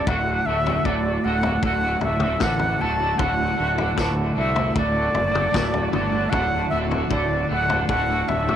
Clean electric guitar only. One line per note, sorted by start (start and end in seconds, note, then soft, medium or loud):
0.07 0.84 D2 medium
0.07 0.46 A2 medium
0.07 0.47 D3 medium
0.07 0.48 A3 medium
0.07 0.48 F#4 medium
0.47 0.84 A2 medium
0.47 0.68 D3 medium
0.47 0.67 A3 medium
0.47 0.66 F#4 medium
0.66 0.85 D3 soft
0.66 0.86 A3 medium
0.66 0.87 F#4 medium
0.84 2.39 D2 medium
0.84 1.23 A2 medium
0.84 1.25 D3 medium
0.84 1.25 A3 medium
0.84 1.27 F#4 loud
1.24 1.62 A2 medium
1.24 1.46 D3 medium
1.24 1.45 A3 medium
1.24 1.43 F#4 medium
1.43 1.63 D3 medium
1.43 1.64 A3 medium
1.43 1.65 F#4 medium
1.63 2.21 A2 medium
1.63 1.85 D3 medium
1.63 1.84 A3 medium
1.63 1.83 F#4 medium
1.83 2.24 D3 medium
1.83 2.22 A3 medium
1.83 2.21 F#4 medium
2.21 2.41 D3 medium
2.21 2.41 A3 medium
2.21 2.42 F#4 medium
2.40 3.16 D2 medium
2.40 2.77 A2 medium
2.40 2.79 D3 loud
2.40 2.80 A3 loud
2.40 2.81 F#4 loud
2.78 3.16 A2 medium
2.78 3.00 D3 medium
2.78 2.99 A3 medium
2.78 2.97 F#4 medium
2.97 3.18 D3 medium
2.97 3.18 A3 medium
2.97 3.19 F#4 medium
3.17 3.95 D2 medium
3.17 3.54 A2 medium
3.17 3.55 D3 loud
3.17 3.57 A3 loud
3.17 3.58 F#4 medium
3.55 3.95 A2 medium
3.55 3.78 D3 medium
3.55 3.77 A3 medium
3.55 3.76 F#4 medium
3.76 3.96 D3 medium
3.76 3.97 A3 medium
3.76 3.97 F#4 medium
3.95 5.50 D2 medium
3.95 4.33 A2 medium
3.95 4.35 D3 medium
3.95 4.37 A3 medium
3.95 4.37 F#4 medium
4.35 4.72 A2 medium
4.35 4.57 D3 medium
4.35 4.55 A3 medium
4.35 4.54 F#4 medium
4.54 4.74 D3 medium
4.54 4.75 A3 medium
4.54 4.76 F#4 medium
4.74 5.33 A2 medium
4.74 4.94 D3 medium
4.74 4.93 A3 medium
4.74 4.91 F#4 medium
4.92 5.33 D3 medium
4.92 5.32 A3 medium
4.92 5.31 F#4 medium
5.32 5.52 D3 medium
5.32 5.52 A3 medium
5.32 5.54 F#4 medium
5.51 6.29 D2 medium
5.51 5.90 A2 medium
5.51 5.91 D3 medium
5.51 5.92 A3 loud
5.51 5.93 F#4 loud
5.91 6.29 A2 medium
5.91 6.12 D3 medium
5.91 6.10 A3 medium
5.91 6.09 F#4 medium
6.10 6.31 D3 medium
6.10 6.31 A3 medium
6.10 6.32 F#4 medium
6.30 7.08 D2 medium
6.30 6.69 A2 medium
6.30 6.71 D3 loud
6.30 6.71 A3 loud
6.30 6.72 F#4 loud
6.70 7.08 A2 medium
6.70 6.91 D3 medium
6.70 6.89 A3 medium
6.70 6.88 F#4 medium
6.89 7.10 D3 medium
6.89 7.10 A3 medium
6.89 7.11 F#4 medium
7.09 8.56 D2 medium
7.09 7.47 A2 loud
7.09 7.49 D3 medium
7.09 7.49 A3 loud
7.09 7.50 F#4 loud
7.48 7.87 A2 medium
7.48 7.69 D3 medium
7.48 7.68 A3 medium
7.48 7.67 F#4 medium
7.68 7.88 D3 medium
7.68 7.89 A3 medium
7.68 7.90 F#4 medium
7.88 8.47 A2 medium
7.88 8.09 D3 medium
7.88 8.08 A3 medium
7.88 8.07 F#4 medium
8.08 8.49 D3 medium
8.08 8.48 A3 medium
8.08 8.47 F#4 medium
8.48 8.56 D3 medium
8.48 8.56 A3 medium
8.48 8.56 F#4 medium